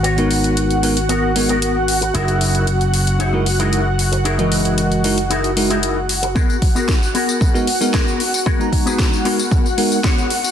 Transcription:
<<
  \new Staff \with { instrumentName = "Analog synth pad" } { \time 4/4 \key gis \minor \tempo 4 = 114 <fis' fis''>1~ | <fis' fis''>1~ | <fis' fis''>1 | <fis' fis''>1~ |
<fis' fis''>1 | }
  \new Staff \with { instrumentName = "Clean electric guitar" } { \time 4/4 \key gis \minor <b fis' cis''>4 r4 <b fis' ais'>8 r16 <b fis' ais'>8 r8. | <dis' e' gis' ais'>4 r4 <dis' e' gis' cis''>8 r16 <dis' e' gis' ais'>8 r8. | <dis' e' gis' ais'>4 r4 <dis' e' gis' ais'>8 r16 <dis' e' gis' ais'>8 r8. | <b fis' gis' ais'>8 r16 <b fis' gis' ais'>16 r8 <b fis' gis' ais'>8. r8. <b fis' gis' ais'>8 r8 |
<b fis' gis' ais'>8 r16 <b fis' gis' b'>16 r8 <b fis' gis' ais'>8. r8. <b fis' gis' cis''>8 r8 | }
  \new Staff \with { instrumentName = "Tine electric piano" } { \time 4/4 \key gis \minor r16 <gis b dis' fis' ais'>4~ <gis b dis' fis' ais'>16 <gis b dis' fis' ais'>16 r8. <gis b dis' fis' ais'>16 r4 r16 | r2 r16 <gis dis' e' fis' ais'>16 r16 <gis dis' e' fis' ais'>16 r4 | r16 <e gis fis' ais' dis''>4~ <e gis fis' ais' dis''>16 <gis dis' e' fis' ais'>16 r8. <gis dis' e' fis' ais'>16 r4 r16 | r2 r16 <gis b dis' fis' ais'>16 r16 <gis b dis' fis' ais'>16 r4 |
r16 <gis b dis' fis' ais''>4~ <gis b dis' fis' ais''>16 <gis b dis' fis' ais'>16 r8. <gis b dis' fis' ais'>16 r4 r16 | }
  \new Staff \with { instrumentName = "Slap bass" } { \clef bass \time 4/4 \key gis \minor gis,,1 | fis,,1~ | fis,,1 | r1 |
r1 | }
  \new DrumStaff \with { instrumentName = "Drums" } \drummode { \time 4/4 hh16 hh16 hho16 hh16 hh16 hh16 hho16 hh16 hh8 hho16 hh16 hh8 hho16 hh16 | hh16 hh16 hho16 hh16 hh16 hh16 hho16 hh16 hh8 hho16 hh16 hh8 hho16 hh16 | hh16 hh16 hho16 hh16 hh16 hh16 hho16 hh16 hh16 hh16 hho16 hh16 hh8 hho16 hh16 | <bd tamb>16 tamb16 <hho bd>16 tamb16 <bd sn tamb>16 tamb16 hho16 tamb16 <bd tamb>16 tamb16 hho16 tamb16 <bd sn tamb>16 tamb16 hho16 tamb16 |
<bd tamb>16 tamb16 <hho bd>16 tamb16 <bd sn tamb>16 tamb16 hho16 tamb16 <bd tamb>16 tamb16 hho16 tamb16 <bd sn tamb>16 tamb16 hho16 tamb16 | }
>>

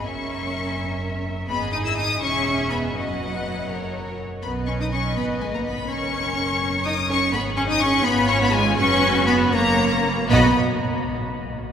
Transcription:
<<
  \new Staff \with { instrumentName = "Violin section" } { \time 6/8 \key fis \mixolydian \tempo 4. = 82 cis'''2~ cis'''8 r8 | b''8 dis'''16 e'''16 dis'''8 cis'''4 b''8 | fis''2~ fis''8 r8 | b''8 cis'''16 dis'''16 cis'''8 b''8 gis''16 ais''16 b''8 |
cis'''2 dis'''8 cis'''8 | b''8 cis'''16 dis'''16 cis'''8 b''8 cis'''16 b''16 gis''8 | cis'''4 b''8 ais''4. | b''8 r2 r8 | }
  \new Staff \with { instrumentName = "Violin section" } { \time 6/8 \key fis \mixolydian << { e''2. | dis''4. e''4. | dis''4. cis''4 r8 | dis''2. |
cis''2.~ | cis''4. cis''4. | b'4. cis''4 r8 | dis''8 r2 r8 | } \\ { ais'2. | gis'4. gis'4. | b'4. ais'4 r8 | b'2. |
ais'4. ais'4. | gis'4. eis'4. | fis'4. ais'4 r8 | fis'8 r2 r8 | } >> }
  \new Staff \with { instrumentName = "Cello section" } { \time 6/8 \key fis \mixolydian cis'2~ cis'8 r8 | b8 dis'16 e'16 dis'8 cis'4 b8 | fis2~ fis8 r8 | b8 cis'16 dis'16 cis'8 b8 gis16 ais16 b8 |
cis'2 dis'8 cis'8 | b8 cis'16 dis'16 cis'8 b8 cis'16 b16 gis8 | cis'4 b8 ais4. | b8 r2 r8 | }
  \new Staff \with { instrumentName = "Viola section" } { \time 6/8 \key fis \mixolydian cis'2~ cis'8 r8 | b8 dis'16 e'16 dis'8 cis'4 b8 | fis2~ fis8 r8 | b8 cis'16 dis'16 cis'8 b8 gis16 ais16 b8 |
cis'2 dis'8 cis'8 | b8 cis'16 dis'16 cis'8 b8 cis'16 b16 gis8 | cis'4 b8 ais4. | b8 r2 r8 | }
  \new Staff \with { instrumentName = "Double bass section" } { \clef bass \time 6/8 \key fis \mixolydian fis,,2. | gis,,4. e,,4. | fis,,4. fis,,4 r8 | b,,4. gis,,4. |
fis,,2. | gis,,4. gis,,4. | fis,,4. fis,,4 r8 | b,,8 r2 r8 | }
>>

